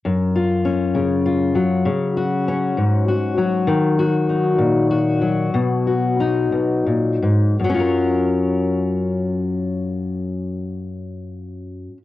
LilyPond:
\new Staff \with { instrumentName = "Steel-string acoustic guitar" } { \clef bass \time 6/8 \key fis \major \tempo 4. = 62 << { r8 eis'8 cis'4 eis'4 | r8 fis'8 cis'4 fis'4~ | fis'8 fis'8 dis'4 fis'4~ | fis'8 fis'8 dis'2 |
<fis cis' eis' ais'>2.~ | <fis cis' eis' ais'>2. | } \\ { fis,4. cis4 fis8 | cis4. gis,4 fis8 | dis4. ais,4 fis8 | b,4. b,8 ais,8 gis,8 |
fis,2.~ | fis,2. | } >> }